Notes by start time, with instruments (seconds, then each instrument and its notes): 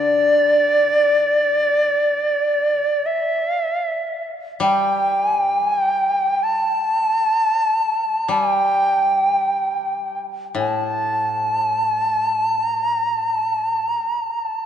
Already playing: koto D3, shakuhachi D5
3.06 shakuhachi E5
3.49 shakuhachi F5
3.61 shakuhachi E5
4.60 koto G3, shakuhachi G5
5.25 shakuhachi G#5
5.42 shakuhachi G5
5.60 shakuhachi G#5
5.77 shakuhachi G5
6.43 shakuhachi A5
8.28 koto G3, shakuhachi G#5
8.49 shakuhachi G5
10.55 koto A2, shakuhachi A5
12.67 shakuhachi A#5
13.24 shakuhachi A5
13.86 shakuhachi A#5
14.43 shakuhachi A5